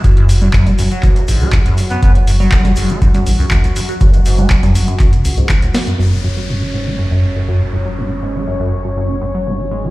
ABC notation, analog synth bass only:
X:1
M:4/4
L:1/16
Q:1/4=121
K:F#m
V:1 name="Analog synth bass" clef=bass
F,,,4 E,,, F,,, F,,, z3 A,,, C,, z4 | F,,,4 E,,, F,,, F,,, z3 A,,, C,, z4 | F,,,4 E,,, F,,, F,,, z3 C,, C,, z4 | F,,,16- |
F,,,16 |]